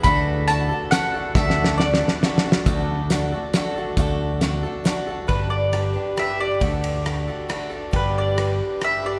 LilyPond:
<<
  \new Staff \with { instrumentName = "Mandolin" } { \time 3/4 \key d \major \tempo 4 = 137 b''4 a''4 fis''4 | e''4 d''4. r8 | r2. | r2. |
b'8 d''4. e''8 d''8~ | d''4. r4. | b'8 d''4. e''8 d''8 | }
  \new Staff \with { instrumentName = "Steel-string acoustic guitar" } { \time 3/4 \key d \major <d a d' fis' a'>4 <a d' fis' a'>8 <d' fis' a'>8 <a d' fis' a'>8 <d' fis' a'>8 | <d a d' fis' a'>4 <a d' fis' a'>8 <d' fis' a'>8 <a d' fis' a'>8 <d' fis' a'>8 | <d a d' fis' a'>4 <a d' fis' a'>8 <d' fis' a'>8 <a d' fis' a'>8 <d' fis' a'>8 | <d a d' fis' a'>4 <a d' fis' a'>8 <d' fis' a'>8 <a d' fis' a'>8 <d' fis' a'>8 |
<g, d g d' g' b'>4 <g d' g' b'>8 <g d' g' b'>8 <g d' g' b'>8 <g d' g' b'>8 | <d a d' fis' a'>4 <a d' fis' a'>8 <d' fis' a'>8 <a d' fis' a'>8 <d' fis' a'>8 | <g, d g d' g' b'>4 <g d' g' b'>4 <g d' g' b'>8 <g d' g' b'>8 | }
  \new Staff \with { instrumentName = "Picked electric bass" } { \clef bass \time 3/4 \key d \major d,2 r4 | d,2 r4 | d,2 r4 | d,2 r4 |
g,,2 r4 | d,2 r4 | g,,2 r4 | }
  \new DrumStaff \with { instrumentName = "Drums" } \drummode { \time 3/4 <hh bd>4 hh4 <hh sn>4 | \tuplet 3/2 { <bd sn>8 sn8 sn8 sn8 sn8 sn8 sn8 sn8 sn8 } | <hh bd>4 <hh sn>4 <hh sn>4 | <hh bd>4 <hh sn>4 <hh sn>4 |
<bd cymr>4 <cymr ss>4 <cymr ss>4 | <bd cymr>8 cymr8 <cymr ss>4 <cymr ss>4 | <bd cymr>4 <cymr ss>4 <cymr ss>4 | }
>>